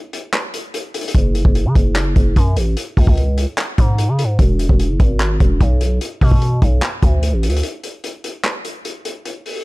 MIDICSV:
0, 0, Header, 1, 3, 480
1, 0, Start_track
1, 0, Tempo, 405405
1, 1357, Time_signature, 4, 2, 24, 8
1, 11415, End_track
2, 0, Start_track
2, 0, Title_t, "808-style bass"
2, 0, Program_c, 0, 38
2, 1357, Note_on_c, 0, 30, 119
2, 1703, Note_off_c, 0, 30, 0
2, 1716, Note_on_c, 0, 30, 106
2, 1957, Note_on_c, 0, 49, 100
2, 1975, Note_off_c, 0, 30, 0
2, 2071, Note_off_c, 0, 49, 0
2, 2077, Note_on_c, 0, 30, 107
2, 2538, Note_off_c, 0, 30, 0
2, 2558, Note_on_c, 0, 30, 101
2, 2788, Note_off_c, 0, 30, 0
2, 2797, Note_on_c, 0, 42, 114
2, 3037, Note_on_c, 0, 33, 97
2, 3055, Note_off_c, 0, 42, 0
2, 3265, Note_off_c, 0, 33, 0
2, 3518, Note_on_c, 0, 37, 104
2, 3630, Note_off_c, 0, 37, 0
2, 3637, Note_on_c, 0, 37, 103
2, 4098, Note_off_c, 0, 37, 0
2, 4478, Note_on_c, 0, 44, 103
2, 4837, Note_on_c, 0, 49, 100
2, 4855, Note_off_c, 0, 44, 0
2, 5018, Note_on_c, 0, 44, 97
2, 5035, Note_off_c, 0, 49, 0
2, 5189, Note_off_c, 0, 44, 0
2, 5197, Note_on_c, 0, 28, 116
2, 5543, Note_off_c, 0, 28, 0
2, 5557, Note_on_c, 0, 28, 105
2, 5797, Note_on_c, 0, 30, 97
2, 5815, Note_off_c, 0, 28, 0
2, 5911, Note_off_c, 0, 30, 0
2, 5918, Note_on_c, 0, 32, 109
2, 6378, Note_off_c, 0, 32, 0
2, 6398, Note_on_c, 0, 28, 99
2, 6628, Note_off_c, 0, 28, 0
2, 6637, Note_on_c, 0, 35, 111
2, 7098, Note_off_c, 0, 35, 0
2, 7357, Note_on_c, 0, 47, 103
2, 7818, Note_off_c, 0, 47, 0
2, 7837, Note_on_c, 0, 35, 105
2, 8068, Note_off_c, 0, 35, 0
2, 8318, Note_on_c, 0, 38, 103
2, 8677, Note_on_c, 0, 33, 100
2, 8695, Note_off_c, 0, 38, 0
2, 8856, Note_on_c, 0, 38, 98
2, 8874, Note_off_c, 0, 33, 0
2, 9028, Note_off_c, 0, 38, 0
2, 11415, End_track
3, 0, Start_track
3, 0, Title_t, "Drums"
3, 157, Note_on_c, 9, 42, 78
3, 275, Note_off_c, 9, 42, 0
3, 396, Note_on_c, 9, 42, 74
3, 397, Note_on_c, 9, 39, 120
3, 515, Note_off_c, 9, 42, 0
3, 516, Note_off_c, 9, 39, 0
3, 637, Note_on_c, 9, 42, 69
3, 755, Note_off_c, 9, 42, 0
3, 876, Note_on_c, 9, 42, 81
3, 995, Note_off_c, 9, 42, 0
3, 1117, Note_on_c, 9, 42, 74
3, 1197, Note_off_c, 9, 42, 0
3, 1197, Note_on_c, 9, 42, 72
3, 1277, Note_off_c, 9, 42, 0
3, 1277, Note_on_c, 9, 42, 74
3, 1356, Note_off_c, 9, 42, 0
3, 1356, Note_on_c, 9, 42, 87
3, 1357, Note_on_c, 9, 36, 104
3, 1475, Note_off_c, 9, 36, 0
3, 1475, Note_off_c, 9, 42, 0
3, 1597, Note_on_c, 9, 42, 68
3, 1715, Note_off_c, 9, 42, 0
3, 1717, Note_on_c, 9, 36, 103
3, 1835, Note_off_c, 9, 36, 0
3, 1837, Note_on_c, 9, 42, 74
3, 1955, Note_off_c, 9, 42, 0
3, 2077, Note_on_c, 9, 36, 97
3, 2077, Note_on_c, 9, 42, 77
3, 2196, Note_off_c, 9, 36, 0
3, 2196, Note_off_c, 9, 42, 0
3, 2316, Note_on_c, 9, 42, 79
3, 2318, Note_on_c, 9, 39, 120
3, 2435, Note_off_c, 9, 42, 0
3, 2436, Note_off_c, 9, 39, 0
3, 2557, Note_on_c, 9, 42, 68
3, 2558, Note_on_c, 9, 36, 106
3, 2675, Note_off_c, 9, 42, 0
3, 2676, Note_off_c, 9, 36, 0
3, 2797, Note_on_c, 9, 36, 93
3, 2797, Note_on_c, 9, 42, 80
3, 2915, Note_off_c, 9, 36, 0
3, 2915, Note_off_c, 9, 42, 0
3, 3037, Note_on_c, 9, 42, 87
3, 3156, Note_off_c, 9, 42, 0
3, 3277, Note_on_c, 9, 42, 87
3, 3396, Note_off_c, 9, 42, 0
3, 3517, Note_on_c, 9, 36, 84
3, 3518, Note_on_c, 9, 46, 73
3, 3636, Note_off_c, 9, 36, 0
3, 3636, Note_off_c, 9, 46, 0
3, 3637, Note_on_c, 9, 36, 99
3, 3755, Note_off_c, 9, 36, 0
3, 3758, Note_on_c, 9, 42, 73
3, 3876, Note_off_c, 9, 42, 0
3, 3998, Note_on_c, 9, 42, 79
3, 4117, Note_off_c, 9, 42, 0
3, 4237, Note_on_c, 9, 42, 79
3, 4238, Note_on_c, 9, 39, 119
3, 4356, Note_off_c, 9, 42, 0
3, 4357, Note_off_c, 9, 39, 0
3, 4478, Note_on_c, 9, 36, 105
3, 4478, Note_on_c, 9, 42, 67
3, 4596, Note_off_c, 9, 42, 0
3, 4597, Note_off_c, 9, 36, 0
3, 4717, Note_on_c, 9, 42, 83
3, 4836, Note_off_c, 9, 42, 0
3, 4958, Note_on_c, 9, 42, 87
3, 5076, Note_off_c, 9, 42, 0
3, 5197, Note_on_c, 9, 36, 110
3, 5197, Note_on_c, 9, 42, 85
3, 5316, Note_off_c, 9, 36, 0
3, 5316, Note_off_c, 9, 42, 0
3, 5438, Note_on_c, 9, 42, 65
3, 5556, Note_off_c, 9, 42, 0
3, 5557, Note_on_c, 9, 36, 100
3, 5675, Note_off_c, 9, 36, 0
3, 5677, Note_on_c, 9, 42, 73
3, 5796, Note_off_c, 9, 42, 0
3, 5917, Note_on_c, 9, 42, 78
3, 5918, Note_on_c, 9, 36, 97
3, 6036, Note_off_c, 9, 36, 0
3, 6036, Note_off_c, 9, 42, 0
3, 6157, Note_on_c, 9, 42, 79
3, 6158, Note_on_c, 9, 39, 122
3, 6276, Note_off_c, 9, 42, 0
3, 6277, Note_off_c, 9, 39, 0
3, 6397, Note_on_c, 9, 42, 68
3, 6398, Note_on_c, 9, 36, 100
3, 6516, Note_off_c, 9, 36, 0
3, 6516, Note_off_c, 9, 42, 0
3, 6637, Note_on_c, 9, 36, 94
3, 6637, Note_on_c, 9, 42, 81
3, 6755, Note_off_c, 9, 36, 0
3, 6756, Note_off_c, 9, 42, 0
3, 6877, Note_on_c, 9, 42, 87
3, 6996, Note_off_c, 9, 42, 0
3, 7117, Note_on_c, 9, 42, 86
3, 7236, Note_off_c, 9, 42, 0
3, 7357, Note_on_c, 9, 36, 84
3, 7357, Note_on_c, 9, 46, 73
3, 7475, Note_off_c, 9, 46, 0
3, 7476, Note_off_c, 9, 36, 0
3, 7477, Note_on_c, 9, 36, 99
3, 7595, Note_off_c, 9, 36, 0
3, 7597, Note_on_c, 9, 42, 72
3, 7716, Note_off_c, 9, 42, 0
3, 7837, Note_on_c, 9, 36, 99
3, 7837, Note_on_c, 9, 42, 75
3, 7956, Note_off_c, 9, 36, 0
3, 7956, Note_off_c, 9, 42, 0
3, 8077, Note_on_c, 9, 42, 75
3, 8078, Note_on_c, 9, 39, 116
3, 8196, Note_off_c, 9, 42, 0
3, 8197, Note_off_c, 9, 39, 0
3, 8317, Note_on_c, 9, 42, 68
3, 8318, Note_on_c, 9, 36, 101
3, 8436, Note_off_c, 9, 36, 0
3, 8436, Note_off_c, 9, 42, 0
3, 8557, Note_on_c, 9, 42, 81
3, 8676, Note_off_c, 9, 42, 0
3, 8798, Note_on_c, 9, 42, 72
3, 8877, Note_off_c, 9, 42, 0
3, 8877, Note_on_c, 9, 42, 74
3, 8957, Note_off_c, 9, 42, 0
3, 8957, Note_on_c, 9, 42, 74
3, 9037, Note_off_c, 9, 42, 0
3, 9037, Note_on_c, 9, 42, 88
3, 9155, Note_off_c, 9, 42, 0
3, 9277, Note_on_c, 9, 42, 65
3, 9395, Note_off_c, 9, 42, 0
3, 9517, Note_on_c, 9, 42, 73
3, 9636, Note_off_c, 9, 42, 0
3, 9758, Note_on_c, 9, 42, 77
3, 9876, Note_off_c, 9, 42, 0
3, 9997, Note_on_c, 9, 42, 75
3, 9998, Note_on_c, 9, 39, 125
3, 10116, Note_off_c, 9, 42, 0
3, 10117, Note_off_c, 9, 39, 0
3, 10237, Note_on_c, 9, 42, 68
3, 10356, Note_off_c, 9, 42, 0
3, 10477, Note_on_c, 9, 42, 81
3, 10596, Note_off_c, 9, 42, 0
3, 10717, Note_on_c, 9, 42, 87
3, 10835, Note_off_c, 9, 42, 0
3, 10958, Note_on_c, 9, 42, 86
3, 11076, Note_off_c, 9, 42, 0
3, 11197, Note_on_c, 9, 46, 71
3, 11316, Note_off_c, 9, 46, 0
3, 11415, End_track
0, 0, End_of_file